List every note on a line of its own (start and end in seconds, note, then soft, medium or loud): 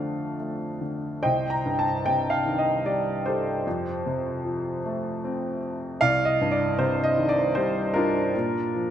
0.00 1.19 F2 medium
0.00 0.81 D3 soft
0.00 0.38 A3 soft
0.00 0.35 A4 soft
0.00 0.35 D5 medium
0.00 0.36 F5 medium
0.39 1.21 A3 soft
0.81 1.22 D3 soft
1.22 3.63 C2 soft
1.22 2.41 C5 medium
1.22 2.41 D#5 medium
1.22 1.51 G5 medium
1.50 1.76 A#5 medium
1.65 3.22 G2 soft
1.79 2.06 A5 medium
2.06 3.63 C3 soft
2.06 2.33 G5 medium
2.30 2.59 F5 medium
2.45 3.62 D#3 soft
2.58 2.86 D#5 medium
2.85 3.63 G3 soft
2.85 3.27 D5 medium
3.26 4.80 G4 soft
3.26 4.80 A4 soft
3.26 4.79 C5 medium
3.67 5.96 F2 medium
4.06 5.58 C3 soft
4.45 5.96 F3 soft
4.85 5.97 A3 soft
5.24 5.99 C4 soft
6.01 8.31 C2 medium
6.01 6.50 D5 medium
6.01 6.27 F5 loud
6.25 6.49 D#5 medium
6.41 7.92 G2 soft
6.51 6.78 D5 medium
6.79 8.31 C3 medium
6.79 7.02 C5 medium
7.04 7.30 D#5 medium
7.18 8.31 D#3 medium
7.29 7.56 D5 medium
7.55 8.33 G3 soft
7.55 7.95 C5 medium
7.94 8.90 D4 medium
7.94 8.90 F4 medium
7.94 8.90 A#4 medium
8.36 8.90 A#2 medium
8.75 8.90 F3 soft